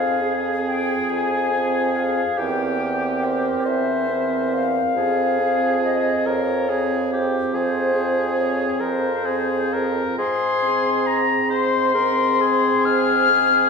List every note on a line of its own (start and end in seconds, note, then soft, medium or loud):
0.00 0.94 F2 soft
0.00 0.22 C4 soft
0.00 0.23 G#4 soft
0.00 2.39 G#4 soft
0.00 0.41 F5 medium
0.23 1.50 C4 soft
0.23 1.50 G#4 soft
0.67 1.11 G5 medium
1.09 2.23 F2 soft
1.09 1.98 G#5 medium
1.53 2.22 C4 soft
1.53 2.22 G#4 soft
1.96 2.41 F5 soft
2.38 3.51 E2 soft
2.38 2.80 C4 soft
2.38 3.65 G4 soft
2.38 2.80 A#4 soft
2.38 3.25 G5 medium
2.81 4.07 C4 soft
2.81 4.08 A#4 soft
3.24 3.70 C5 medium
3.65 4.81 E2 soft
3.65 4.67 C5 soft
3.65 4.55 E5 medium
4.09 4.95 C4 soft
4.09 4.95 A#4 soft
4.53 5.83 F5 medium
4.96 6.11 F2 soft
4.96 5.39 C4 soft
4.96 6.28 G#4 soft
4.96 5.39 G#4 soft
5.40 6.67 C4 soft
5.40 6.66 G#4 soft
5.84 6.28 D#5 medium
6.26 7.38 F2 soft
6.26 6.70 A#4 soft
6.26 7.27 C#5 medium
6.69 7.93 C4 soft
6.69 7.11 G#4 soft
6.69 7.93 G#4 soft
7.12 7.56 G4 soft
7.53 8.65 F2 soft
7.53 8.82 G#4 soft
7.53 8.34 C5 medium
7.95 9.09 C4 soft
7.95 9.09 G#4 soft
8.38 8.82 C#5 medium
8.80 10.02 F2 soft
8.80 9.27 A#4 soft
8.80 10.17 C5 medium
9.25 10.17 C4 soft
9.25 9.75 G#4 soft
9.25 10.17 G#4 soft
9.73 10.18 A#4 soft
10.18 11.34 G#2 medium
10.18 11.20 G#4 medium
10.18 11.08 C6 medium
10.64 11.91 C4 soft
10.64 11.91 G#4 soft
11.07 11.51 A#5 medium
11.49 12.70 G#2 medium
11.49 11.91 C5 medium
11.49 12.86 C6 medium
11.94 13.28 C4 soft
11.94 13.28 G#4 soft
11.94 12.42 A#4 soft
12.41 13.70 G#4 medium
12.85 13.70 G#2 medium
12.85 13.70 F6 medium
13.30 13.70 C4 soft
13.30 13.70 G#4 soft